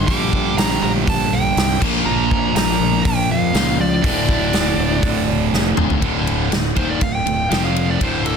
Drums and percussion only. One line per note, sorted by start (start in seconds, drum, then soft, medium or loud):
0.08 kick loud
0.08 open hi-hat medium
0.33 kick medium
0.58 snare loud
0.58 open hi-hat medium
1.08 kick loud
1.08 open hi-hat medium
1.57 snare loud
1.57 open hi-hat medium
1.82 kick loud
1.82 crash loud
2.31 kick loud
2.56 snare loud
2.56 open hi-hat medium
3.05 kick loud
3.05 open hi-hat medium
3.54 snare loud
3.54 open hi-hat medium
4.04 kick loud
4.04 open hi-hat medium
4.29 kick loud
4.53 snare loud
4.53 open hi-hat medium
5.03 kick loud
5.03 open hi-hat medium
5.54 snare medium
5.77 mid tom loud
5.90 floor tom medium
6.02 kick medium
6.02 ride medium
6.27 ride medium
6.52 snare loud
6.52 ride medium
6.76 kick medium
6.76 ride medium
7.01 kick medium
7.01 ride medium
7.27 ride medium
7.51 snare loud
7.51 ride medium
7.76 ride medium
8.01 kick loud
8.01 ride medium
8.26 ride medium